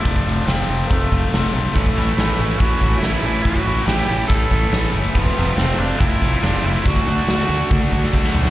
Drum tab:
HH |x-x-x-x-x-x-x-x-|x-x-x-x-x-x-x-x-|x-x-x-x-x-x-x-x-|x-x-x-x-x-x-x-x-|
SD |----o-------o---|----o-------o---|----o-------o---|--o-o-------o---|
T1 |----------------|----------------|----------------|----------------|
FT |----------------|----------------|----------------|----------------|
BD |oo------o-o-----|oo------o-o-----|oo------o-o-----|oo------o-o-----|

HH |x-x-x-x---------|
SD |----o------o-o-o|
T1 |--------oo------|
FT |--------------o-|
BD |oo------o-o-o---|